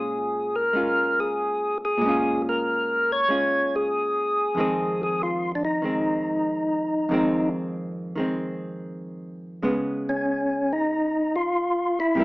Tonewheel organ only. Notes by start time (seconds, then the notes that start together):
Already playing: G#4
0.56 A#4
1.20 G#4
1.85 G#4
2.49 A#4
3.12 C#5
3.76 G#4
4.61 G#4
5.03 G#4
5.23 F4
5.55 D4
5.65 D#4
10.09 C#4
10.73 D#4
11.36 F4
12.00 E4